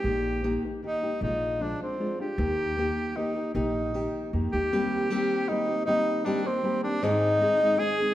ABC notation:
X:1
M:3/4
L:1/8
Q:1/4=154
K:Eb
V:1 name="Tenor saxophone"
G3 z E2 | E2 D C2 G- | G4 E2 | E4 z G- |
G4 E2 | E2 D C2 D | E4 A2 |]
V:2 name="Nylon-string guitar"
[B,,E,B,EG]2 [E,B,EG] [B,EG] [E,B,EG] [B,EG] | [B,,F,A,F]2 [F,A,DF] [A,DF] [F,A,DF] [A,DF] | [E,B,EG]2 [E,B,EG]2 [E,B,EG] [B,EG] | [E,B,EG]2 [E,B,EG]2 [E,B,EG] [B,EG] |
[E,G,B,CG]2 [G,B,CG]2 [G,B,CG] [B,CG] | [E,G,B,CG]2 [G,B,CG] [B,CG] [G,B,CG] [B,CG] | [A,,E,A,CEA]2 [A,CEA] [A,CEA] [A,CEA] [A,CEA] |]
V:3 name="Upright bass" clef=bass
B,,,4 z2 | B,,,4 z2 | E,,4 z2 | B,,,4 F,, E,, |
z6 | z6 | z6 |]